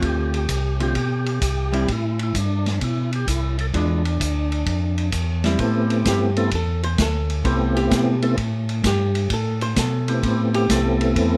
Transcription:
Already playing: D3 A3 C4 F4
0.02 D2 G4, kick, ride
0.34 ride
0.49 C2, kick, hi-hat pedal, ride
0.80 D3 A3 C4 F4 G4, ride
0.95 B2, kick, ride
1.26 ride
1.41 C2, kick, hi-hat pedal, ride
1.72 G3 C4 E4, ride
1.88 A2, kick, ride
1.92 E4
2.19 ride
2.23 E4
2.34 G2 D4, kick, hi-hat pedal, ride
2.66 snare, ride
2.81 B2 E4, kick, ride
3.13 G4, ride
3.27 C2 E4, kick, hi-hat pedal, ride
3.59 A4, ride
3.74 E2 E3 G#3 D4 F4, kick, ride
4.05 ride
4.20 D2, kick, hi-hat pedal, ride
4.52 ride
4.66 F2, kick, ride
4.98 ride
5.12 E2, kick, hi-hat pedal, ride
5.44 G3 C4 E4, snare, ride
5.59 A2 A3 B3 C4 E4 G4, kick, ride
5.90 ride
6.05 G2 G4, kick, snare, hi-hat pedal, ride
6.36 A3 B3 C4 E4 A4, ride
6.51 E2 A4, kick, ride
6.83 C5, ride
6.98 D2 A4, kick, snare, hi-hat pedal, ride
7.30 ride
7.44 C2 A3 B3 C4 E4 G4, kick, ride
7.76 G4, ride
7.91 B2, kick, snare, hi-hat pedal, ride
8.22 A3 B3 C4 E4 A4, ride
8.37 A2, kick, ride
8.69 ride
8.83 G2 G4, kick, snare, hi-hat pedal, ride
9.15 ride
9.30 A2 A4, kick, ride
9.61 C5, ride
9.76 B2 A4, kick, snare, hi-hat pedal, ride
10.08 A3 B3 C4 E4 G4, ride
10.23 A2, kick, ride
10.54 G4, ride
10.69 C2 A3 B3 C4 E4 A4, kick, snare, hi-hat pedal, ride
11.01 ride
11.15 E2, kick, ride

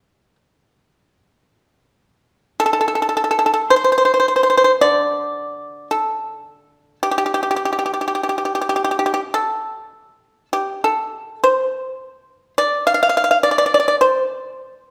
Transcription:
Already playing: G4
2.60 A4
2.66 A4
2.73 A4
2.81 A4
2.88 A4
2.95 A4
3.02 A4
3.09 A4
3.17 A4
3.24 A4
3.31 A4
3.39 A4
3.46 A4
3.54 A4
3.70 C5
3.76 C5
3.84 C5
3.92 C5
3.98 C5
4.05 C5
4.14 C5
4.20 C5
4.28 C5
4.36 C5
4.43 C5
4.50 C5
4.57 C5
4.64 C5
4.81 D3 D5
5.91 A4
7.03 G4
7.11 G4
7.18 G4
7.26 G4
7.34 G4
7.43 G4
7.51 G4
7.56 G4
7.65 G4
7.73 G4
7.79 G4
7.86 G4
7.94 G4
8.01 G4
8.08 G4
8.15 G4
8.23 G4
8.29 G4
8.38 G4
8.45 G4
8.55 G4
8.61 G4
8.69 G4
8.76 G4
8.84 G4
8.91 G4
8.99 G4
9.06 G4
9.14 G4
9.34 A4
10.53 G4
10.84 A4
11.44 C5
12.58 D5
12.87 F5
12.94 F5
13.03 F5
13.09 F5
13.17 F5
13.24 F5
13.31 F5
13.43 D5
13.51 D5
13.58 D5
13.66 D5
13.74 D5
13.80 D5
13.88 D5
14.01 C5

